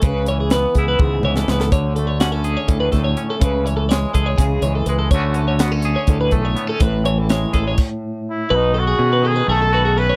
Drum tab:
CC |--------------|--------------|--------------|--------------|
HH |x-x-x-x-------|x-x-x-x-x-x-x-|x-x-x-x-x-x-x-|x-x-x-x-x-x-x-|
SD |----o------ooo|----o-----o---|----o---o-----|----o---------|
T1 |--------o-----|--------------|--------------|--------------|
T2 |----------o---|--------------|--------------|--------------|
BD |o-----o-o-----|o-------o-o---|o-----o-o-----|o-------o-o---|

CC |--------x-----|--------------|
HH |x-x-x-x-------|--------------|
SD |----o---------|--------------|
T1 |--------------|--------------|
T2 |--------------|--------------|
BD |o-----o-o-----|--------------|